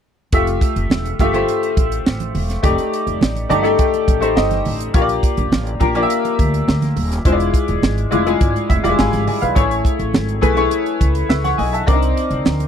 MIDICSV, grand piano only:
0, 0, Header, 1, 2, 480
1, 0, Start_track
1, 0, Key_signature, -1, "major"
1, 0, Tempo, 577478
1, 273, Time_signature, 4, 2, 24, 8
1, 10536, End_track
2, 0, Start_track
2, 0, Title_t, "Grand piano"
2, 0, Program_c, 0, 0
2, 270, Note_on_c, 0, 57, 79
2, 279, Note_on_c, 0, 65, 75
2, 279, Note_on_c, 0, 67, 67
2, 283, Note_on_c, 0, 76, 83
2, 433, Control_c, 0, 64, 127
2, 871, Note_off_c, 0, 57, 0
2, 875, Note_off_c, 0, 65, 0
2, 875, Note_off_c, 0, 67, 0
2, 877, Note_off_c, 0, 76, 0
2, 996, Note_on_c, 0, 57, 82
2, 998, Note_on_c, 0, 65, 74
2, 1001, Note_on_c, 0, 67, 77
2, 1002, Note_on_c, 0, 76, 88
2, 1092, Note_off_c, 0, 57, 0
2, 1095, Note_off_c, 0, 65, 0
2, 1097, Note_off_c, 0, 67, 0
2, 1097, Note_off_c, 0, 76, 0
2, 1104, Note_on_c, 0, 57, 84
2, 1110, Note_on_c, 0, 65, 73
2, 1110, Note_on_c, 0, 67, 67
2, 1118, Note_on_c, 0, 72, 84
2, 1907, Note_off_c, 0, 57, 0
2, 1911, Note_off_c, 0, 65, 0
2, 1911, Note_off_c, 0, 67, 0
2, 1914, Note_off_c, 0, 72, 0
2, 2182, Note_on_c, 0, 57, 81
2, 2186, Note_on_c, 0, 63, 70
2, 2188, Note_on_c, 0, 67, 72
2, 2193, Note_on_c, 0, 74, 87
2, 2203, Control_c, 0, 64, 0
2, 2330, Control_c, 0, 64, 127
2, 2786, Note_off_c, 0, 57, 0
2, 2788, Note_off_c, 0, 63, 0
2, 2789, Note_off_c, 0, 67, 0
2, 2792, Note_off_c, 0, 74, 0
2, 2902, Note_on_c, 0, 57, 80
2, 2905, Note_on_c, 0, 63, 78
2, 2907, Note_on_c, 0, 81, 66
2, 2908, Note_on_c, 0, 67, 69
2, 2910, Note_on_c, 0, 74, 95
2, 3002, Note_off_c, 0, 63, 0
2, 3004, Note_off_c, 0, 57, 0
2, 3007, Note_off_c, 0, 67, 0
2, 3010, Note_off_c, 0, 74, 0
2, 3014, Note_on_c, 0, 63, 73
2, 3016, Note_on_c, 0, 57, 85
2, 3020, Note_on_c, 0, 67, 75
2, 3026, Note_on_c, 0, 69, 92
2, 3132, Note_off_c, 0, 81, 0
2, 3150, Note_on_c, 0, 79, 69
2, 3422, Note_off_c, 0, 63, 0
2, 3423, Note_off_c, 0, 57, 0
2, 3425, Note_off_c, 0, 67, 0
2, 3429, Note_off_c, 0, 69, 0
2, 3495, Note_on_c, 0, 57, 79
2, 3504, Note_on_c, 0, 63, 75
2, 3504, Note_on_c, 0, 67, 70
2, 3506, Note_on_c, 0, 72, 82
2, 3597, Note_off_c, 0, 79, 0
2, 3626, Note_on_c, 0, 75, 75
2, 4003, Note_off_c, 0, 57, 0
2, 4007, Note_off_c, 0, 63, 0
2, 4007, Note_off_c, 0, 67, 0
2, 4008, Note_off_c, 0, 72, 0
2, 4075, Note_off_c, 0, 75, 0
2, 4105, Note_on_c, 0, 58, 81
2, 4105, Note_on_c, 0, 65, 80
2, 4112, Note_on_c, 0, 67, 80
2, 4113, Note_on_c, 0, 73, 69
2, 4120, Control_c, 0, 64, 0
2, 4166, Note_off_c, 0, 73, 0
2, 4169, Note_on_c, 0, 74, 88
2, 4270, Control_c, 0, 64, 127
2, 4708, Note_off_c, 0, 58, 0
2, 4708, Note_off_c, 0, 65, 0
2, 4711, Note_off_c, 0, 67, 0
2, 4740, Note_off_c, 0, 74, 0
2, 4819, Note_on_c, 0, 58, 79
2, 4823, Note_on_c, 0, 65, 76
2, 4826, Note_on_c, 0, 67, 69
2, 4832, Note_on_c, 0, 70, 89
2, 4925, Note_off_c, 0, 58, 0
2, 4927, Note_off_c, 0, 65, 0
2, 4929, Note_off_c, 0, 67, 0
2, 4932, Note_off_c, 0, 70, 0
2, 4944, Note_on_c, 0, 58, 85
2, 4948, Note_on_c, 0, 65, 81
2, 4950, Note_on_c, 0, 67, 71
2, 4957, Note_on_c, 0, 74, 76
2, 5008, Note_off_c, 0, 74, 0
2, 5008, Note_on_c, 0, 76, 87
2, 5747, Note_off_c, 0, 58, 0
2, 5749, Note_off_c, 0, 65, 0
2, 5750, Note_off_c, 0, 67, 0
2, 5779, Note_off_c, 0, 76, 0
2, 6028, Note_on_c, 0, 56, 82
2, 6029, Note_on_c, 0, 64, 69
2, 6035, Note_on_c, 0, 65, 77
2, 6036, Note_on_c, 0, 72, 72
2, 6043, Control_c, 0, 64, 0
2, 6087, Note_on_c, 0, 74, 83
2, 6088, Note_off_c, 0, 72, 0
2, 6193, Control_c, 0, 64, 127
2, 6629, Note_off_c, 0, 56, 0
2, 6630, Note_off_c, 0, 64, 0
2, 6633, Note_off_c, 0, 65, 0
2, 6659, Note_off_c, 0, 74, 0
2, 6738, Note_on_c, 0, 56, 80
2, 6742, Note_on_c, 0, 64, 69
2, 6746, Note_on_c, 0, 65, 66
2, 6746, Note_on_c, 0, 74, 82
2, 6845, Note_off_c, 0, 56, 0
2, 6847, Note_off_c, 0, 64, 0
2, 6849, Note_off_c, 0, 65, 0
2, 6849, Note_off_c, 0, 74, 0
2, 6868, Note_on_c, 0, 64, 67
2, 6869, Note_on_c, 0, 56, 83
2, 6870, Note_on_c, 0, 65, 72
2, 6874, Note_on_c, 0, 68, 86
2, 7227, Note_on_c, 0, 76, 60
2, 7270, Note_off_c, 0, 64, 0
2, 7271, Note_off_c, 0, 56, 0
2, 7271, Note_off_c, 0, 65, 0
2, 7273, Note_off_c, 0, 68, 0
2, 7342, Note_on_c, 0, 55, 62
2, 7343, Note_on_c, 0, 64, 67
2, 7345, Note_on_c, 0, 65, 71
2, 7348, Note_on_c, 0, 74, 90
2, 7390, Note_on_c, 0, 56, 80
2, 7401, Note_off_c, 0, 55, 0
2, 7452, Note_off_c, 0, 76, 0
2, 7465, Note_on_c, 0, 80, 68
2, 7467, Note_on_c, 0, 83, 63
2, 7470, Note_off_c, 0, 74, 0
2, 7473, Note_on_c, 0, 77, 57
2, 7692, Note_off_c, 0, 80, 0
2, 7697, Note_off_c, 0, 83, 0
2, 7701, Note_off_c, 0, 77, 0
2, 7705, Note_on_c, 0, 80, 63
2, 7710, Note_on_c, 0, 74, 55
2, 7822, Note_off_c, 0, 80, 0
2, 7824, Note_on_c, 0, 77, 58
2, 7825, Note_off_c, 0, 74, 0
2, 7830, Note_on_c, 0, 71, 49
2, 7848, Note_off_c, 0, 64, 0
2, 7849, Note_off_c, 0, 65, 0
2, 7871, Note_off_c, 0, 56, 0
2, 7940, Note_on_c, 0, 57, 77
2, 7940, Note_on_c, 0, 64, 73
2, 7943, Note_on_c, 0, 68, 71
2, 7947, Note_on_c, 0, 73, 80
2, 7963, Control_c, 0, 64, 0
2, 8056, Note_off_c, 0, 77, 0
2, 8059, Note_off_c, 0, 71, 0
2, 8128, Control_c, 0, 64, 127
2, 8546, Note_off_c, 0, 57, 0
2, 8547, Note_off_c, 0, 64, 0
2, 8548, Note_off_c, 0, 68, 0
2, 8550, Note_off_c, 0, 73, 0
2, 8655, Note_on_c, 0, 57, 83
2, 8659, Note_on_c, 0, 64, 71
2, 8660, Note_on_c, 0, 68, 73
2, 8663, Note_on_c, 0, 71, 87
2, 8764, Note_off_c, 0, 57, 0
2, 8766, Note_off_c, 0, 64, 0
2, 8767, Note_off_c, 0, 68, 0
2, 8768, Note_off_c, 0, 71, 0
2, 8778, Note_on_c, 0, 57, 77
2, 8783, Note_on_c, 0, 64, 76
2, 8786, Note_on_c, 0, 68, 70
2, 8787, Note_on_c, 0, 73, 91
2, 9151, Note_off_c, 0, 73, 0
2, 9385, Note_on_c, 0, 76, 59
2, 9386, Note_on_c, 0, 71, 55
2, 9504, Note_off_c, 0, 71, 0
2, 9504, Note_off_c, 0, 76, 0
2, 9510, Note_on_c, 0, 78, 69
2, 9516, Note_on_c, 0, 73, 64
2, 9586, Note_off_c, 0, 57, 0
2, 9589, Note_off_c, 0, 64, 0
2, 9590, Note_off_c, 0, 68, 0
2, 9621, Note_on_c, 0, 80, 65
2, 9626, Note_off_c, 0, 78, 0
2, 9626, Note_on_c, 0, 75, 53
2, 9629, Note_off_c, 0, 73, 0
2, 9742, Note_off_c, 0, 80, 0
2, 9744, Note_off_c, 0, 75, 0
2, 9748, Note_on_c, 0, 81, 59
2, 9757, Note_on_c, 0, 76, 50
2, 9862, Note_on_c, 0, 60, 83
2, 9868, Note_on_c, 0, 62, 57
2, 9868, Note_on_c, 0, 70, 72
2, 9869, Note_on_c, 0, 74, 88
2, 9884, Control_c, 0, 64, 0
2, 9920, Note_on_c, 0, 63, 72
2, 9925, Note_off_c, 0, 62, 0
2, 9980, Note_off_c, 0, 81, 0
2, 9984, Note_off_c, 0, 76, 0
2, 10024, Control_c, 0, 64, 127
2, 10469, Note_off_c, 0, 60, 0
2, 10472, Note_off_c, 0, 70, 0
2, 10473, Note_off_c, 0, 74, 0
2, 10498, Note_off_c, 0, 63, 0
2, 10536, End_track
0, 0, End_of_file